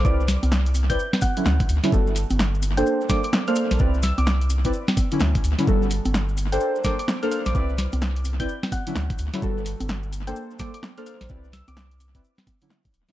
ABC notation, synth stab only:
X:1
M:4/4
L:1/16
Q:"Swing 16ths" 1/4=128
K:Clyd
V:1 name="Synth stab"
[CEBd] z6 [CEBd] z3 [D,F,^CE] z3 [D,F,CE] | [G,B,FA] z6 [_B,DAc]3 [B,DAc] z2 [B,DAc]3 | [CEBd] z6 [CEBd] z3 [D,F,^CE] z3 [D,F,CE] | [G,B,FA] z6 [_B,DAc]3 [B,DAc] z2 [B,DAc]3 |
[CEBd] z6 [CEBd] z3 [D,F,^CE] z3 [D,F,CE] | [G,B,FA] z6 [_B,DAc]3 [B,DAc] z2 [B,DAc]3 | [CEBd] z6 [CEBd] z3 [D,F,^CE] z3 [D,F,CE] |]